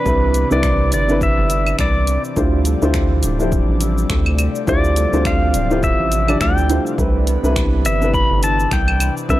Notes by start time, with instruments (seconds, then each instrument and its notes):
Already playing: analog synth pad C3 E3 D4 D5, harp A3 C4 D4 E4, pedal steel guitar B4
0.05 analog synth bass C2, grand piano C3 D4 E4 B4, kick, shaker
0.34 harp B3, closed hi-hat, shaker
0.50 analog synth bass C2, grand piano C3 D4 E4 B4, pedal steel guitar D5, shaker
0.63 harp C4, finger snap, kick, shaker
0.92 analog synth bass G1, harp D4, pedal steel guitar D5, closed hi-hat, shaker
1.08 grand piano C3 D4 E4 B4, shaker
1.21 pedal steel guitar E5, kick, shaker
1.38 analog synth bass G1
1.50 harp E4, closed hi-hat, shaker
1.67 claves, shaker
1.79 analog synth bass C2, harp B3, pedal steel guitar D5, finger snap, kick, shaker
2.07 harp C4, closed hi-hat, shaker
2.24 shaker
2.36 analog synth bass D2, grand piano D3 D4 E4 F4 G4 C5, analog synth pad F3 G3 D5, kick, shaker
2.65 harp A3, closed hi-hat, shaker
2.82 analog synth bass D2, grand piano D3 D4 E4 F4 G4 C5, shaker
2.94 harp C4, finger snap, kick, shaker
3.23 analog synth bass D1, harp D4, closed hi-hat, shaker
3.38 grand piano D3 F3 D4 E4 G4 C5, shaker
3.52 kick, shaker
3.69 analog synth bass A1
3.81 harp E4, closed hi-hat, shaker
3.98 shaker
4.10 analog synth bass D2, harp A3, finger snap, kick, shaker
4.26 claves
4.39 harp C4, closed hi-hat, claves, shaker
4.55 shaker
4.67 analog synth bass D2, grand piano D3 D4 E4 F4 G4 C5, pedal steel guitar D5, kick, shaker
4.84 shaker
4.96 harp A3, closed hi-hat, shaker
5.13 analog synth bass D2, grand piano D3 C4 D4 F4 G4 C5, shaker
5.25 harp C4, pedal steel guitar F5, finger snap, kick, shaker
5.54 analog synth bass D1, harp D4, closed hi-hat, shaker
5.70 grand piano D3 D4 E4 F4 G4 C5, shaker
5.83 pedal steel guitar E5, kick, shaker
5.99 analog synth bass A1
6.12 harp E4, closed hi-hat, shaker
6.28 grand piano D3 F3 D4 E4 G4 D5, claves, shaker
6.41 analog synth bass D2, harp A3, pedal steel guitar G5, finger snap, kick, shaker
6.58 shaker
6.69 grand piano D3 D4 E4 F4 G4 C5, harp C4, closed hi-hat, shaker
6.86 shaker
6.98 analog synth bass C2, grand piano C3 C4 D4 E4 B4, analog synth pad E3 D4 B4, kick, shaker
7.27 harp B3, closed hi-hat, shaker
7.43 analog synth bass C2, grand piano C3 D4 E4 B4, shaker
7.56 harp B3, finger snap, kick, shaker
7.85 analog synth bass G1, harp D4, pedal steel guitar E5, closed hi-hat, shaker
8.00 grand piano C3 D4 E4 B4, shaker
8.14 pedal steel guitar B5, kick, shaker
8.30 analog synth bass G1
8.42 harp E4, pedal steel guitar A5, closed hi-hat, shaker
8.60 shaker
8.71 analog synth bass C2, harp B3, pedal steel guitar G5, finger snap, kick, shaker
8.88 claves
9.00 harp C4, closed hi-hat, claves, shaker
9.17 shaker
9.29 analog synth bass C2, grand piano C3 D4 E4 B4, analog synth pad A3, pedal steel guitar E5, kick, shaker